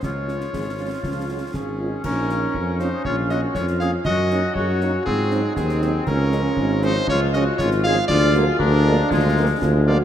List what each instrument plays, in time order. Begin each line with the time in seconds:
0.02 tuba C#2, trombone section F3 G#3, woodwind section F4, cornet C#5, concert bass drum, snare
0.28 french horn section G#3 C#4 F4, snare
0.41 snare
0.53 tuba G#1, trombone section G#3, concert bass drum, snare
0.79 trombone section F3, french horn section G#3 C#4 F4
1.03 tuba C#2, trombone section F3, concert bass drum, snare
1.28 trombone section F#3, french horn section G#3 C#4 F4
1.54 tuba G#1, trombone section F3, woodwind section C#4, cornet G#4, concert bass drum, snare
1.78 trombone section D#3, french horn section G#3 C#4 F4
2.04 tuba A#1, trombone section F3 C#4, woodwind section C#4, euphonium D#4, cornet A#4, concert bass drum, crash
2.29 french horn section A#3 C#4 F4, snare
2.54 tuba F2, euphonium C#4, concert bass drum
2.79 french horn section A#3 C#4 F4, woodwind section D#4, cornet C5, snare
3.05 tuba A#1, woodwind section F4, cornet C#5, concert bass drum
3.29 french horn section A#3 C#4 F4, woodwind section F#4, cornet D#5, snare
3.54 tuba F2, euphonium F4, woodwind section F4, cornet C#5, concert bass drum, snare
3.68 snare
3.80 french horn section A#3 C#4 F4, woodwind section G#4, cornet F5, snare
4.05 tuba F#2, trombone section F#3 C#4, woodwind section F#4, euphonium F#4, cornet D#5, concert bass drum, crash
4.30 french horn section A#3 C#4 D#4, snare
4.54 tuba F#2, woodwind section F#4, euphonium G#4, cornet C#5, concert bass drum
4.81 french horn section A#3 C#4 D#4, euphonium F#4, snare
5.05 tuba G#2, trombone section C4, woodwind section C4, euphonium F4, cornet G#4, concert bass drum
5.31 french horn section F#3 C4 D#4, euphonium D#4, snare
5.56 tuba D#2, woodwind section C4, cornet G#4, concert bass drum, snare
5.69 snare
5.82 french horn section F#3 C4 D#4, snare
6.06 tuba C#2, trombone section F3 G#3, euphonium C#4, woodwind section C#4, cornet A#4, concert bass drum, crash
6.32 french horn section F3 G#3 C#4, snare
6.57 tuba G#1, concert bass drum
6.82 french horn section F3 G#3 C#4, woodwind section D#4, cornet C5, snare
7.07 tuba C#2, euphonium F4, woodwind section F4, cornet C#5, concert bass drum
7.33 french horn section F3 G#3 C#4, woodwind section F#4, cornet D#5, snare
7.58 tuba G#1, woodwind section F4, cornet C#5, concert bass drum, snare
7.71 snare
7.84 french horn section F3 G#3 C#4, woodwind section G#4, cornet F5, snare
8.08 tuba D2, trombone section F3 G#3, euphonium D4, woodwind section F4, cornet D5, concert bass drum, crash
8.34 french horn section F3 G#3 A#3, euphonium F#4, snare
8.59 tuba D2, woodwind section D4, euphonium F4, cornet A#4, concert bass drum
8.87 french horn section F3 G#3 A#3, euphonium D4
9.10 tuba D2, woodwind section G#3, cornet F4, concert bass drum, snare
9.38 french horn section F3 G#3 A#3
9.61 tuba D2, euphonium F4, concert bass drum, snare
9.86 french horn section F3 G#3 A#3, woodwind section F4, euphonium F#4, cornet D5